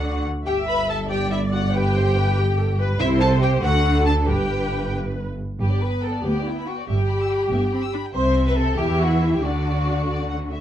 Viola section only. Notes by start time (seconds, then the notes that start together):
Already playing: D5
0.46 E5
1.10 D5
1.74 B4
1.94 C5
2.16 B4
2.36 G4
2.58 A4
2.79 B4
3.00 C5
3.63 A4
4.28 B4
5.61 B3
6.89 G3
7.52 B3
7.73 C4
7.93 D4
8.14 C4
8.77 E4
9.42 D4